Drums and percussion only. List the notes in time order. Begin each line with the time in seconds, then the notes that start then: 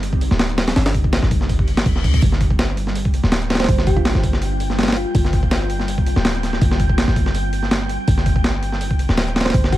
0.03 open hi-hat
0.13 kick
0.21 open hi-hat
0.31 snare
0.39 snare, open hi-hat
0.49 closed hi-hat
0.58 snare, open hi-hat
0.68 snare, open hi-hat
0.76 snare, open hi-hat
0.86 snare, open hi-hat
0.94 kick, open hi-hat
1.04 kick
1.13 snare, open hi-hat
1.22 snare
1.31 kick, open hi-hat
1.41 snare
1.49 kick, open hi-hat
1.59 kick
1.68 open hi-hat
1.77 snare, open hi-hat
1.86 kick, open hi-hat
1.96 snare
2.04 kick, open hi-hat
2.14 kick, open hi-hat
2.22 kick, open hi-hat
2.32 snare
2.41 kick, open hi-hat
2.50 kick
2.59 snare, open hi-hat
2.77 open hi-hat
2.87 snare
2.95 open hi-hat
3.05 kick
3.14 open hi-hat
3.23 snare
3.32 snare, open hi-hat
3.42 closed hi-hat
3.50 snare, open hi-hat
3.55 snare, open hi-hat
3.60 snare, open hi-hat
3.64 snare, open hi-hat
3.69 kick, open hi-hat
3.78 snare
3.87 kick, open hi-hat
3.97 kick
4.05 snare, open hi-hat
4.15 snare
4.23 kick, open hi-hat
4.33 snare
4.42 open hi-hat
4.60 open hi-hat
4.70 snare
4.79 snare, open hi-hat
4.83 snare, open hi-hat
4.88 snare, open hi-hat
4.92 snare, open hi-hat
4.97 open hi-hat
5.15 kick, open hi-hat
5.25 snare
5.33 kick, open hi-hat
5.43 kick
5.51 snare, open hi-hat
5.70 open hi-hat
5.80 snare
5.88 open hi-hat
5.98 kick
6.06 open hi-hat
6.16 snare
6.25 snare, open hi-hat
6.35 closed hi-hat
6.43 snare, open hi-hat
6.53 snare
6.61 kick, open hi-hat
6.71 snare
6.80 kick, open hi-hat
6.89 kick
6.98 snare, open hi-hat
7.08 snare
7.16 kick, open hi-hat
7.26 snare
7.35 open hi-hat
7.53 open hi-hat
7.63 snare
7.71 snare, open hi-hat
7.89 open hi-hat
8.08 kick, open hi-hat
8.17 snare
8.26 kick, open hi-hat
8.36 kick
8.44 snare, open hi-hat
8.63 open hi-hat
8.72 snare
8.81 open hi-hat
8.91 kick
8.99 open hi-hat
9.09 snare
9.18 snare, open hi-hat
9.27 closed hi-hat
9.36 snare, open hi-hat
9.41 snare, open hi-hat
9.46 snare, open hi-hat
9.50 snare, open hi-hat
9.54 kick, open hi-hat
9.64 snare
9.72 kick, open hi-hat